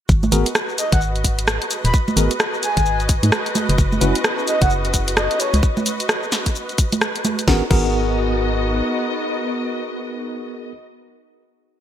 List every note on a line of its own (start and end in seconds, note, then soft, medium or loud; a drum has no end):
0.09 0.30 G#1 loud
0.09 7.46 F#4 medium
0.09 kick loud
0.09 shaker soft
0.23 7.48 B4 medium
0.23 high conga medium
0.23 shaker soft
0.32 0.45 G#1 loud
0.32 0.46 B3 medium
0.32 0.46 F#4 medium
0.32 0.46 G#4 medium
0.32 0.46 A#4 medium
0.32 open hi-hat loud
0.32 shaker medium
0.36 7.48 D#5 medium
0.46 closed hi-hat medium
0.46 shaker soft
0.55 cross-stick loud
0.55 shaker soft
0.69 shaker soft
0.78 0.89 D#5 medium
0.78 open hi-hat loud
0.78 shaker medium
0.92 1.59 G#1 medium
0.92 1.01 F#5 medium
0.92 kick loud
0.92 closed hi-hat medium
0.92 shaker soft
1.01 shaker soft
1.16 closed hi-hat soft
1.16 shaker soft
1.24 kick medium
1.24 open hi-hat loud
1.24 shaker medium
1.39 closed hi-hat medium
1.39 shaker soft
1.48 cross-stick loud
1.48 shaker soft
1.62 closed hi-hat medium
1.62 shaker soft
1.71 open hi-hat loud
1.71 shaker medium
1.85 1.93 D#1 loud
1.85 1.94 B5 loud
1.85 closed hi-hat medium
1.85 shaker soft
1.94 kick loud
1.94 shaker soft
2.08 high conga medium
2.08 shaker soft
2.17 2.29 G#1 loud
2.17 2.31 B3 medium
2.17 2.31 F#4 medium
2.17 2.31 G#4 medium
2.17 2.31 A#4 medium
2.17 open hi-hat loud
2.17 shaker medium
2.31 closed hi-hat medium
2.31 shaker soft
2.40 cross-stick loud
2.40 shaker soft
2.54 shaker soft
2.63 3.00 G#5 medium
2.63 open hi-hat medium
2.63 shaker medium
2.77 3.21 G#1 medium
2.77 kick medium
2.77 closed hi-hat medium
2.77 shaker soft
2.86 shaker soft
3.00 closed hi-hat soft
3.00 shaker soft
3.09 kick loud
3.09 open hi-hat loud
3.09 shaker medium
3.23 3.31 G#2 medium
3.23 closed hi-hat medium
3.23 high conga medium
3.23 shaker soft
3.32 cross-stick loud
3.32 shaker soft
3.46 closed hi-hat medium
3.46 shaker soft
3.55 open hi-hat loud
3.55 high conga medium
3.55 shaker medium
3.69 3.77 F#1 loud
3.69 closed hi-hat medium
3.69 shaker soft
3.78 3.99 F#1 loud
3.78 5.61 B3 medium
3.78 5.61 C#4 medium
3.78 5.61 E4 medium
3.78 5.61 G#4 medium
3.78 kick loud
3.78 shaker soft
3.92 high conga medium
3.92 shaker soft
4.01 4.14 F#1 loud
4.01 4.15 C#4 medium
4.01 4.15 E4 medium
4.01 4.15 F#4 medium
4.01 4.15 B4 medium
4.01 open hi-hat loud
4.01 shaker medium
4.15 closed hi-hat medium
4.15 shaker soft
4.24 cross-stick loud
4.24 shaker soft
4.39 shaker soft
4.47 4.59 D#5 medium
4.47 open hi-hat medium
4.47 shaker medium
4.62 5.28 F#1 medium
4.62 4.70 F#5 loud
4.62 kick loud
4.62 closed hi-hat medium
4.62 shaker soft
4.70 shaker soft
4.85 closed hi-hat soft
4.85 shaker soft
4.94 kick medium
4.94 open hi-hat loud
4.94 shaker medium
5.08 closed hi-hat medium
5.08 shaker soft
5.17 5.38 D#5 medium
5.17 cross-stick loud
5.17 shaker soft
5.31 closed hi-hat medium
5.31 shaker soft
5.40 5.54 C#5 loud
5.40 open hi-hat loud
5.40 shaker medium
5.54 5.62 C#2 loud
5.54 closed hi-hat medium
5.54 shaker soft
5.63 kick loud
5.63 shaker soft
5.77 high conga medium
5.77 shaker soft
5.86 open hi-hat loud
5.86 shaker medium
6.00 closed hi-hat medium
6.00 shaker soft
6.09 cross-stick loud
6.09 shaker soft
6.23 shaker soft
6.32 snare medium
6.32 open hi-hat medium
6.32 shaker medium
6.46 kick medium
6.46 closed hi-hat medium
6.46 shaker soft
6.55 shaker soft
6.69 closed hi-hat soft
6.69 shaker soft
6.78 kick loud
6.78 open hi-hat loud
6.78 shaker medium
6.92 closed hi-hat medium
6.92 high conga medium
6.92 shaker soft
7.01 cross-stick loud
7.01 shaker soft
7.16 closed hi-hat medium
7.16 shaker soft
7.25 open hi-hat medium
7.25 high conga medium
7.25 shaker medium
7.39 closed hi-hat medium
7.39 shaker soft
7.47 7.62 G#1 loud
7.47 7.62 B3 medium
7.47 10.48 B3 medium
7.47 10.48 D#4 medium
7.47 10.48 F#4 medium
7.47 7.62 F#4 medium
7.47 10.48 F#4 medium
7.47 7.62 G#4 medium
7.47 7.62 A#4 loud
7.47 10.48 A#4 medium
7.47 kick loud
7.47 snare medium
7.56 10.57 B3 medium
7.63 10.64 D#5 medium
7.71 8.82 G#1 loud
7.71 10.71 B3 medium
7.71 10.71 F#4 medium
7.71 10.71 G#4 medium
7.71 10.71 A#4 medium
7.71 kick loud
7.71 crash medium